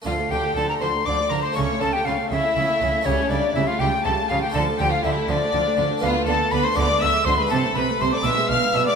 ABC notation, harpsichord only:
X:1
M:6/8
L:1/8
Q:3/8=81
K:Dm
V:1 name="Harpsichord"
[A,DA]6 | [A,EA]6 | [A,EG]6 | [A,DF]6 |
[K:Ephr] [A,B,F]3 [^G,B,E]3 | [A,CE]3 [^G,DE]3 |]
V:2 name="Harpsichord" clef=bass
D, D, D, D, D, D, | ^C, C, C, C, C, C, | ^C, C, C, C, C, C, | D, D, D, D, D, D, |
[K:Ephr] D, D, D, D, D, D, | C, C, C, B,, B,, B,, |]